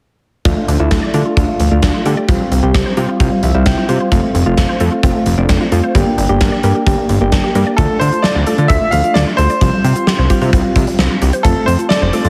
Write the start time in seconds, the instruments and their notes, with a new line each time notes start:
0.45 analog synth bass D2, synth arpeggio sound F3, synth keys A3 D4 F4, kick, closed hi-hat
0.57 synth arpeggio sound A3
0.68 analog synth bass D2, synth arpeggio sound D4, closed hi-hat
0.80 analog synth bass D2, synth keys A3 D4 E4, synth arpeggio sound F4
0.91 analog synth bass D2, synth arpeggio sound A4, kick, snare, closed hi-hat
1.03 synth arpeggio sound D5
1.14 analog synth bass D3, synth keys A3 D4 F4, synth arpeggio sound A4, closed hi-hat
1.25 synth arpeggio sound F4
1.37 analog synth bass D2, synth keys A3 D4 F4, synth arpeggio sound D4, kick, closed hi-hat
1.48 synth arpeggio sound A3
1.60 analog synth bass D2, synth arpeggio sound F3, closed hi-hat
1.71 analog synth bass D2, synth arpeggio sound A3, synth keys A3 D4 F4
1.82 analog synth bass D2, synth arpeggio sound D4, kick, snare, closed hi-hat
1.94 synth arpeggio sound F4
2.06 analog synth bass D3, synth keys A3 D4 G4, synth arpeggio sound A4, closed hi-hat
2.17 synth arpeggio sound D5
2.28 analog synth bass C2, synth arpeggio sound F3, synth keys G3 C4 F4, kick, closed hi-hat
2.40 synth arpeggio sound G3
2.51 analog synth bass C2, synth arpeggio sound C4, closed hi-hat
2.63 analog synth bass C2, synth keys G3 C4 G4, synth arpeggio sound F4
2.74 analog synth bass C2, synth arpeggio sound G4, kick, snare, closed hi-hat
2.86 synth arpeggio sound C5
2.97 analog synth bass C3, synth keys G3 C4 F4, synth arpeggio sound G4, closed hi-hat
3.09 synth arpeggio sound F4
3.20 analog synth bass C2, synth keys G3 C4 F4, synth arpeggio sound C4, kick, closed hi-hat
3.32 synth arpeggio sound G3
3.43 analog synth bass C2, synth arpeggio sound F3, synth keys E5, closed hi-hat
3.54 analog synth bass C2, synth arpeggio sound G3, synth keys G3 C4 E4 F5
3.66 analog synth bass C2, synth arpeggio sound C4, synth keys G5, kick, snare, closed hi-hat
3.77 synth arpeggio sound F4
3.89 analog synth bass C3, synth keys G3 C4 F4, synth arpeggio sound G4, closed hi-hat
4.00 synth arpeggio sound C5
4.12 analog synth bass F1, synth arpeggio sound F3, synth keys A3 C4 F4, kick, closed hi-hat
4.23 synth arpeggio sound A3
4.35 analog synth bass F1, synth arpeggio sound C4, closed hi-hat
4.46 analog synth bass F1, synth keys A3 C4 F4, synth arpeggio sound F4
4.57 analog synth bass F1, synth arpeggio sound A4, kick, snare, closed hi-hat
4.69 synth arpeggio sound C5
4.80 analog synth bass F2, synth keys A3 C4 F4, synth arpeggio sound A4, closed hi-hat
4.92 synth arpeggio sound F4
5.03 analog synth bass F1, synth keys A3 C4 F4, synth arpeggio sound C4, kick, closed hi-hat
5.15 synth arpeggio sound A3
5.26 analog synth bass F1, synth arpeggio sound F3, closed hi-hat
5.38 analog synth bass F1, synth arpeggio sound A3, synth keys A3 C4 D4
5.49 analog synth bass F1, synth arpeggio sound C4, kick, snare, closed hi-hat
5.61 synth arpeggio sound F4
5.72 analog synth bass F2, synth keys A3 C4 F4, synth arpeggio sound A4, closed hi-hat
5.83 synth arpeggio sound C5
5.95 analog synth bass G1, synth arpeggio sound G3, synth keys A#3 D4 G4, kick, closed hi-hat
6.06 synth arpeggio sound A#3
6.18 analog synth bass G1, synth arpeggio sound D4, closed hi-hat
6.29 analog synth bass G1, synth keys A#3 D4 G4, synth arpeggio sound G4
6.41 analog synth bass G1, synth arpeggio sound A#4, kick, snare, closed hi-hat
6.52 synth arpeggio sound D5
6.63 analog synth bass G2, synth keys A#3 D4 G4, synth arpeggio sound A#4, closed hi-hat
6.75 synth arpeggio sound G4
6.86 analog synth bass G1, synth keys A#3 D4 G4, synth arpeggio sound D4, kick, closed hi-hat
6.98 synth arpeggio sound A#3
7.09 analog synth bass G1, synth arpeggio sound G3, closed hi-hat
7.21 analog synth bass G1, synth arpeggio sound A#3, synth keys A#3 D4 G4
7.32 analog synth bass G1, synth arpeggio sound D4, kick, snare, closed hi-hat
7.44 synth arpeggio sound G4
7.55 analog synth bass G2, synth keys A#3 D4 G4, synth arpeggio sound A#4, closed hi-hat
7.67 synth arpeggio sound D5
7.77 analog synth bass D2, synth arpeggio sound F3, synth keys A3 D4 F4, grand piano A4, kick, closed hi-hat
7.90 synth arpeggio sound A3
8.00 analog synth bass D3, synth arpeggio sound D4, grand piano C5, closed hi-hat
8.12 synth arpeggio sound F4, closed hi-hat
8.22 synth arpeggio sound A4, grand piano D5, snare
8.35 analog synth bass D2, synth arpeggio sound D5
8.47 synth keys A3 D4 F4, synth arpeggio sound A4, closed hi-hat
8.58 analog synth bass D3, synth arpeggio sound F4, closed hi-hat
8.68 analog synth bass D2, synth arpeggio sound D4, grand piano E5, kick, closed hi-hat
8.81 synth arpeggio sound A3
8.91 analog synth bass D2, synth arpeggio sound F3, grand piano F5, closed hi-hat
9.04 synth keys A3 D4 F4, synth arpeggio sound A3, closed hi-hat
9.14 analog synth bass D2, synth arpeggio sound D4, grand piano D5, snare
9.27 synth arpeggio sound F4
9.37 analog synth bass D2, synth arpeggio sound A4, grand piano C5, closed hi-hat
9.50 synth arpeggio sound D5, closed hi-hat
9.61 analog synth bass C2, synth arpeggio sound F3, synth keys G3 C4 F4, kick, closed hi-hat
9.73 synth arpeggio sound G3
9.84 analog synth bass C3, synth arpeggio sound C4, closed hi-hat
9.96 synth arpeggio sound F4, closed hi-hat
10.07 synth arpeggio sound G4, snare
10.19 analog synth bass C2, synth arpeggio sound C5
10.30 synth keys G3 C4 F4, synth arpeggio sound G4, kick, closed hi-hat
10.41 analog synth bass C3, synth keys G3 C4 F4, synth arpeggio sound F4, closed hi-hat
10.53 analog synth bass C2, synth arpeggio sound C4, kick, closed hi-hat
10.64 synth arpeggio sound G3
10.76 analog synth bass C2, synth arpeggio sound F3, kick, closed hi-hat
10.87 synth arpeggio sound G3, closed hi-hat
10.99 analog synth bass C2, synth arpeggio sound C4, snare
11.10 synth arpeggio sound F4
11.22 analog synth bass C2, synth arpeggio sound G4, closed hi-hat
11.33 synth arpeggio sound C5, closed hi-hat
11.43 analog synth bass F1, synth arpeggio sound F3, synth keys A3 C4 F4, grand piano A4, kick, closed hi-hat
11.56 synth arpeggio sound A3
11.66 analog synth bass F2, synth arpeggio sound C4, grand piano C5, closed hi-hat
11.79 synth arpeggio sound F4, closed hi-hat
11.89 synth arpeggio sound A4, grand piano D5, snare
12.02 analog synth bass F1, synth arpeggio sound C5
12.13 synth keys A3 C4 F4, synth arpeggio sound A4, closed hi-hat
12.25 analog synth bass F2, synth arpeggio sound F4, closed hi-hat